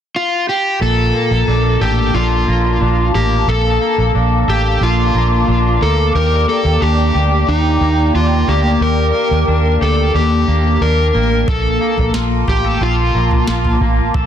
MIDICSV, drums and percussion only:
0, 0, Header, 1, 2, 480
1, 0, Start_track
1, 0, Key_signature, -2, "major"
1, 0, Tempo, 666667
1, 583, Time_signature, 4, 2, 24, 8
1, 10269, End_track
2, 0, Start_track
2, 0, Title_t, "Drums"
2, 8264, Note_on_c, 9, 36, 97
2, 8265, Note_on_c, 9, 43, 101
2, 8336, Note_off_c, 9, 36, 0
2, 8337, Note_off_c, 9, 43, 0
2, 8624, Note_on_c, 9, 43, 55
2, 8696, Note_off_c, 9, 43, 0
2, 8741, Note_on_c, 9, 38, 107
2, 8813, Note_off_c, 9, 38, 0
2, 8983, Note_on_c, 9, 43, 54
2, 9055, Note_off_c, 9, 43, 0
2, 9583, Note_on_c, 9, 43, 52
2, 9655, Note_off_c, 9, 43, 0
2, 9702, Note_on_c, 9, 38, 92
2, 9774, Note_off_c, 9, 38, 0
2, 9825, Note_on_c, 9, 43, 57
2, 9897, Note_off_c, 9, 43, 0
2, 9942, Note_on_c, 9, 36, 77
2, 10014, Note_off_c, 9, 36, 0
2, 10183, Note_on_c, 9, 36, 97
2, 10183, Note_on_c, 9, 43, 96
2, 10255, Note_off_c, 9, 36, 0
2, 10255, Note_off_c, 9, 43, 0
2, 10269, End_track
0, 0, End_of_file